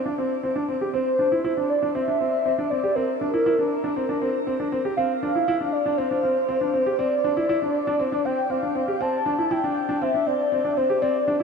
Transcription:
0.06 grand piano D4
0.18 grand piano C4
0.43 grand piano C4
0.56 grand piano D4
0.69 grand piano C4
0.81 grand piano G4
0.94 grand piano C4, soft synth lead C5
1.19 grand piano D4
1.32 grand piano E4
1.44 grand piano E4
1.57 grand piano D4
1.70 soft synth lead D5
1.83 grand piano D4
1.95 grand piano C4, soft synth lead E5
2.08 grand piano D4
2.21 grand piano C4
2.46 grand piano C4
2.58 grand piano D4
2.70 grand piano C4, soft synth lead D5
2.84 grand piano G4
2.95 grand piano C4, soft synth lead A#4
3.21 grand piano D4
3.34 grand piano E4
3.46 grand piano E4
3.59 grand piano D4
3.84 grand piano D4
3.96 grand piano C4
4.09 grand piano D4
4.22 grand piano C4
4.47 grand piano C4
4.60 grand piano D4
4.72 grand piano C4
4.85 grand piano G4
4.97 grand piano C4, soft synth lead F5
5.23 grand piano D4
5.35 grand piano E4
5.48 grand piano E4
5.61 grand piano D4
5.73 soft synth lead D5
5.86 grand piano D4
5.97 grand piano C4, soft synth lead C5
6.11 grand piano D4
6.23 grand piano C4
6.49 grand piano C4
6.61 grand piano D4
6.74 grand piano C4
6.86 grand piano G4
6.98 grand piano C4, soft synth lead D5
7.24 grand piano D4
7.37 grand piano E4
7.49 grand piano E4
7.62 grand piano D4
7.87 grand piano D4
8.00 grand piano C4
8.12 grand piano D4
8.25 grand piano C4, soft synth lead G5
8.50 grand piano C4, soft synth lead F5
8.63 grand piano D4
8.75 grand piano C4
8.88 grand piano G4
9.01 grand piano C4, soft synth lead A5
9.26 grand piano D4
9.38 grand piano E4
9.51 grand piano E4, soft synth lead G5
9.64 grand piano D4
9.89 grand piano D4
10.02 grand piano C4, soft synth lead E5
10.14 grand piano D4
10.27 grand piano C4, soft synth lead D5
10.52 grand piano C4
10.65 grand piano D4
10.77 grand piano C4, soft synth lead C5
10.90 grand piano G4
11.02 grand piano C4, soft synth lead D5
11.28 grand piano D4

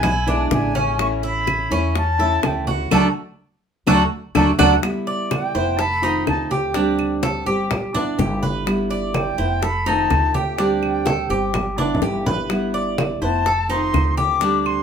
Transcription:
Already playing: upright bass B1, flute G#5
0.03 cuban tres E4, muted nylon-string guitar stroke, high bongo, high conga, low conga, claves
0.26 nylon-string guitar D3 G#3 B3 E4, cuban tres D4, high bongo, high conga, low conga
0.51 upright bass A1, nylon-string guitar D3 G#3 B3 E4, flute G#5, high bongo, low bongo, high conga
0.75 cuban tres C#4, high bongo, high conga
0.98 nylon-string guitar E3 A3 C#4 E4, flute C#6, high bongo, high conga, claves
1.23 cuban tres E4, flute B5, high bongo, high conga
1.47 high bongo, high conga, claves
1.71 upright bass E2, nylon-string guitar A3 C#4 E4, cuban tres C#4, high bongo, high conga
1.95 flute A5, muted nylon-string guitar stroke, high bongo, high conga
2.19 nylon-string guitar A3 C#4 E4, cuban tres A4, high bongo, high conga
2.42 upright bass D2, nylon-string guitar E3 A3 C#4 E4, flute G5, high bongo, low bongo, high conga, claves
2.67 cuban tres F#4, flute F#5, high conga
2.91 upright bass D2, nylon-string guitar F#3 A3 D4, cuban tres A3 D4 F#4, flute A5, low bongo, high conga, claves
3.87 upright bass D2, nylon-string guitar F#3 A3 D4, cuban tres A3 D4 F#4, flute A5, low bongo, high conga, claves
4.35 upright bass D2, nylon-string guitar F#3 A3 D4, cuban tres A3 D4 F#4, flute A5, low bongo, high conga, claves
4.58 upright bass D2, nylon-string guitar F#3 A3 D4, cuban tres A3 D4 F#4, flute A5, low bongo, high conga, claves
4.82 nylon-string guitar G3 B3 E4, high bongo, high conga, claves
5.07 cuban tres D5, high bongo, high conga
5.31 flute G5, high bongo, high conga, claves
5.54 upright bass F1, nylon-string guitar B3 E4, cuban tres C5, high bongo, high conga
5.79 cuban tres A4, flute B5, muted nylon-string guitar stroke, high bongo, high conga
6.02 nylon-string guitar D#3 A3 C4 F4, cuban tres D#4, high bongo, high conga
6.27 upright bass D2, nylon-string guitar A3 C4 F4, flute A5, high bongo, low bongo, high conga, claves
6.51 cuban tres G4, flute G5, high conga
6.74 nylon-string guitar D3 G3 C4 G4, cuban tres D4, high bongo, high conga
6.99 high bongo, high conga, claves
7.23 cuban tres A4, high bongo, high conga
7.46 upright bass G1, nylon-string guitar G3 C4 G4, cuban tres G4, high bongo, high conga
7.71 muted nylon-string guitar stroke, high bongo, high conga, low conga, claves
7.94 nylon-string guitar B3 E4, cuban tres D4, high bongo, high conga, low conga
8.18 upright bass G1, nylon-string guitar G3 B3 E4, cuban tres G4, high bongo, low bongo, high conga
8.43 cuban tres B4, high conga
8.66 nylon-string guitar G3 B3 E4, high bongo, high conga, claves
8.90 cuban tres D5, high bongo, high conga
9.14 flute G5, high bongo, high conga, claves
9.38 upright bass F1, nylon-string guitar B3 E4, cuban tres C5, high bongo, high conga
9.62 cuban tres A4, flute B5, muted nylon-string guitar stroke, high bongo, high conga
9.86 nylon-string guitar D#3 A3 C4 F4, cuban tres D#4, flute A5, high bongo, high conga
10.10 upright bass D2, nylon-string guitar A3 C4 F4, high bongo, low bongo, high conga, claves
10.34 cuban tres G4, flute G5, high conga
10.58 nylon-string guitar D3 G3 C4 G4, cuban tres D4, high bongo, high conga
10.82 high bongo, high conga, claves
11.06 cuban tres A4, high bongo, high conga
11.30 upright bass G1, nylon-string guitar G3 C4 G4, cuban tres G4, high bongo, high conga
11.54 muted nylon-string guitar stroke, high bongo, high conga, low conga, claves
11.77 nylon-string guitar B3 E4, cuban tres D4, high bongo, high conga
11.95 low conga
12.02 upright bass G1, nylon-string guitar G3 B3 E4, cuban tres G4, high bongo, low bongo
12.26 cuban tres B4, low conga
12.50 nylon-string guitar G3 B3 E4, high bongo, high conga, claves
12.74 cuban tres D5, high bongo, high conga
12.98 high bongo, high conga, claves
13.22 upright bass F1, nylon-string guitar B3 E4, cuban tres C5, flute A5, high bongo, high conga
13.46 cuban tres A4, muted nylon-string guitar stroke, high bongo, high conga
13.69 nylon-string guitar D#3 A3 C4 F4, cuban tres D#4, flute C6, high bongo, high conga
13.93 upright bass D2, nylon-string guitar A3 C4 F4, high bongo, low bongo, high conga, claves
14.17 cuban tres G4, flute D6, high conga
14.40 nylon-string guitar D3 G3 C4 G4, cuban tres D4, high bongo, high conga
14.66 flute C6, high bongo, high conga, claves

